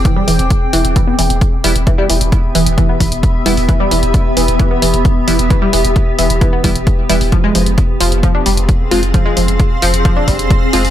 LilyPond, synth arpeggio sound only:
\new Staff \with { instrumentName = "Synth arpeggio sound" } { \clef bass \time 4/4 \key e \phrygian \tempo 4 = 132 e16 g16 e16 r8. e16 r16 e16 b16 e16 r8. e16 r16 | e16 g16 e16 r8. e16 r16 e16 b16 e16 r8. e16 r16 | e16 g16 e16 r8. e16 r16 e16 b16 e16 r8. e16 r16 | e16 g16 e16 r8. e16 r16 e16 b16 e16 r8. e16 r16 |
f16 aes16 f16 r8. f16 r16 f16 d'16 g16 r8. f16 r16 | f16 aes16 f16 r8. f16 r16 f16 d'16 g16 r8. f16 r16 | }